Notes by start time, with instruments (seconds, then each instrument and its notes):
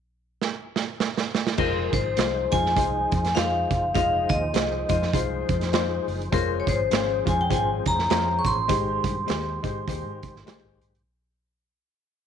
0.42 snare
0.76 snare
1.00 snare
1.17 snare
1.35 snare
1.47 snare
1.57 fingered electric bass F1, tonewheel organ F3 D#4 G#4 C5, grand piano G#3 D#4 F4 C5, vibraphone A#4, kick, crash
1.93 fingered electric bass G#1, vibraphone C5, kick, closed hi-hat
2.17 fingered electric bass C2, grand piano G#3 D#4 F4 C5, snare, closed hi-hat
2.51 fingered electric bass F2, grand piano G#3 D#4 F4 C5, vibraphone G#5, kick, closed hi-hat
2.66 snare
2.75 fingered electric bass C2, grand piano G#3 D#4 F4 C5, kick, closed hi-hat
3.11 fingered electric bass F2, kick, closed hi-hat
3.24 snare, closed hi-hat
3.35 fingered electric bass F2, grand piano G#3 D#4 F4 C5, vibraphone F5, snare, closed hi-hat
3.71 fingered electric bass F#1, kick, closed hi-hat
3.94 fingered electric bass F1, grand piano G#3 D#4 F4 D#5, vibraphone F5, kick, closed hi-hat
4.29 fingered electric bass D#2, vibraphone D#5, kick, closed hi-hat
4.53 fingered electric bass C2, grand piano G#3 D#4 F4 C5, snare, closed hi-hat
4.88 fingered electric bass F2, grand piano G#3 D#4 F4 C5, vibraphone D#5, kick, closed hi-hat
5.02 snare
5.13 fingered electric bass C2, grand piano G#3 D#4 F4 C5, vibraphone C5, kick, closed hi-hat
5.49 fingered electric bass F2, kick, closed hi-hat
5.61 snare, closed hi-hat
5.72 grand piano G#3 D#4 F4 C5, snare, closed hi-hat
6.07 fingered electric bass F#1, open hi-hat
6.22 closed hi-hat
6.31 fingered electric bass F1, grand piano G#3 C#4 F4 C5, tonewheel organ C#4 G#4, vibraphone A#4, kick, closed hi-hat
6.60 vibraphone C#5
6.67 fingered electric bass G#1, vibraphone C5, kick, closed hi-hat
6.91 fingered electric bass G#1, grand piano G#3 C#4 F4 C5, snare, closed hi-hat
7.25 fingered electric bass F2, grand piano G#3 C#4 F4 C5, vibraphone G#5, kick, closed hi-hat
7.41 vibraphone G5
7.49 fingered electric bass G#1, grand piano G#3 C#4 F4 C5, vibraphone G#5, kick, closed hi-hat
7.86 fingered electric bass F2, vibraphone A#5, kick, closed hi-hat
7.99 snare
8.10 fingered electric bass F2, grand piano G#3 C#4 F4 C5, snare, closed hi-hat
8.39 vibraphone C#6
8.44 fingered electric bass A1, vibraphone C6, kick, closed hi-hat
8.68 fingered electric bass G#1, tonewheel organ D#3 G#3 G4, grand piano G#3 D#4 G4 C5, kick, closed hi-hat
9.04 fingered electric bass G2, kick, closed hi-hat
9.26 fingered electric bass D#2, grand piano G#3 D#4 G4 C5, snare, closed hi-hat
9.63 fingered electric bass G#2, grand piano G#3 D#4 G4 C5, kick, closed hi-hat
9.88 fingered electric bass D#2, grand piano G#3 D#4 G4 C5, kick, closed hi-hat
10.06 fingered electric bass G#2
10.23 kick, closed hi-hat
10.35 fingered electric bass G#1, snare
10.46 grand piano G#3 D#4 G4 C5, snare, closed hi-hat
10.65 fingered electric bass G#1
10.81 fingered electric bass G#2, closed hi-hat
10.95 closed hi-hat